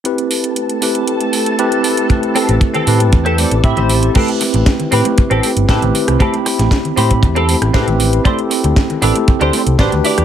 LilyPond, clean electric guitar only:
\new Staff \with { instrumentName = "Clean electric guitar" } { \time 4/4 \key a \minor \tempo 4 = 117 << { r1 | r2 r8 d''8 e''4 | r1 | r1 |
r1 | } \\ { r1 | r8 <c' g' a'>8 r16 <c' g' a'>8 r8 <c' g' a'>8 r8 <c' g' c''>8. | <c' g' a'>16 r4 r16 <c' g' b'>16 r8 <c' g' a'>16 r8 <c' g' a'>16 r8. | <c' g' a'>16 r4 r16 <c' g' c''>16 r8 <c' g' a'>16 r8 <c' g' a'>16 r8. |
<d' g' c''>16 r4 r16 <d' g' b'>16 r8 <d' g' c''>16 r8 <d' g' c''>16 r16 <e' g' d''>8 | } >> }